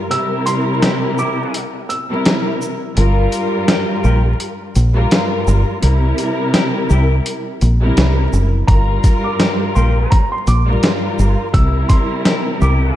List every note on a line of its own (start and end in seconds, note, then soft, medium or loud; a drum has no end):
0.10 1.92 C3 loud
0.10 1.92 G3 medium
0.10 1.92 E4 medium
0.10 1.92 A#4 loud
0.10 0.43 E6 loud
0.10 closed hi-hat loud
0.46 1.14 C6 medium
0.46 closed hi-hat medium
0.46 shaker medium
0.82 0.96 E4 loud
0.82 0.96 G4 medium
0.82 0.96 A#4 loud
0.82 snare loud
0.82 closed hi-hat medium
1.17 1.65 E4 loud
1.17 1.65 G4 loud
1.17 1.65 A#4 loud
1.17 1.51 D6 medium
1.17 shaker soft
1.54 closed hi-hat medium
1.89 2.07 E6 medium
1.89 closed hi-hat medium
1.89 shaker medium
2.10 2.75 C3 medium
2.10 2.75 G3 medium
2.10 2.75 E4 medium
2.10 2.75 A#4 loud
2.25 snare loud
2.25 closed hi-hat medium
2.62 shaker medium
2.96 3.26 G1 loud
2.96 4.77 G2 loud
2.96 4.77 G3 loud
2.96 4.78 F4 loud
2.96 4.78 A#4 loud
2.96 closed hi-hat loud
3.32 closed hi-hat medium
3.32 shaker medium
3.68 3.81 F4 loud
3.68 3.81 G4 loud
3.68 3.80 A#4 loud
3.68 snare loud
3.68 closed hi-hat medium
4.03 4.33 A#1 medium
4.03 4.26 F4 loud
4.03 4.26 G4 loud
4.03 4.26 A#4 loud
4.03 shaker soft
4.40 closed hi-hat medium
4.75 5.05 A#1 loud
4.75 closed hi-hat medium
4.75 shaker medium
4.94 5.76 G2 loud
4.94 5.76 G3 loud
4.94 5.76 F4 medium
4.94 5.76 A#4 loud
5.11 snare loud
5.11 closed hi-hat medium
5.47 5.63 G1 loud
5.47 shaker medium
5.81 6.12 C2 loud
5.81 7.63 C3 loud
5.81 7.63 G3 medium
5.81 7.63 E4 loud
5.81 7.64 A#4 loud
5.81 closed hi-hat loud
6.18 closed hi-hat medium
6.18 shaker medium
6.54 6.67 E4 loud
6.54 6.67 G4 loud
6.54 6.66 A#4 loud
6.54 snare loud
6.54 closed hi-hat medium
6.90 7.19 C2 loud
6.90 7.13 E4 loud
6.90 7.13 G4 medium
6.90 7.13 A#4 loud
6.90 shaker soft
7.26 closed hi-hat medium
7.61 7.91 A#1 loud
7.61 closed hi-hat medium
7.61 shaker medium
7.81 8.46 C3 medium
7.81 8.46 G3 medium
7.81 8.46 E4 medium
7.81 8.47 A#4 loud
7.97 8.26 C2 medium
7.97 snare loud
7.97 closed hi-hat medium
8.33 8.62 F#1 medium
8.33 shaker medium
8.68 8.98 G1 loud
8.68 10.49 G2 loud
8.68 10.49 G3 loud
8.68 10.49 F4 medium
8.68 10.50 A#4 loud
8.68 9.20 A#5 loud
8.68 kick loud
8.68 closed hi-hat loud
9.04 kick medium
9.04 closed hi-hat medium
9.04 shaker medium
9.24 9.38 D6 medium
9.40 9.53 F4 medium
9.40 9.53 G4 loud
9.40 9.53 A#4 loud
9.40 snare loud
9.40 closed hi-hat medium
9.75 10.05 A#1 medium
9.75 10.22 F4 loud
9.75 10.22 G4 medium
9.75 10.22 A#4 loud
9.75 9.93 C6 medium
9.75 shaker soft
10.11 10.28 A#5 medium
10.11 kick medium
10.11 closed hi-hat medium
10.32 10.46 C6 medium
10.47 10.76 A#1 loud
10.47 10.79 D6 medium
10.47 closed hi-hat medium
10.47 shaker medium
10.66 11.47 G2 loud
10.66 11.47 G3 loud
10.66 11.48 F4 medium
10.66 11.48 A#4 loud
10.83 snare loud
10.83 closed hi-hat medium
11.19 11.35 G1 loud
11.19 shaker medium
11.53 11.83 C2 loud
11.53 12.96 C3 loud
11.53 12.96 G3 medium
11.53 12.96 E4 medium
11.53 12.96 A#4 loud
11.53 11.86 E6 loud
11.53 kick loud
11.53 closed hi-hat loud
11.89 12.57 C6 medium
11.89 kick medium
11.89 closed hi-hat medium
11.89 shaker medium
12.25 12.39 E4 loud
12.25 12.39 G4 medium
12.25 12.39 A#4 loud
12.25 snare loud
12.25 closed hi-hat medium
12.60 12.91 C2 loud
12.60 12.96 E4 loud
12.60 12.96 G4 medium
12.60 12.96 A#4 loud
12.60 12.94 D6 medium
12.60 shaker soft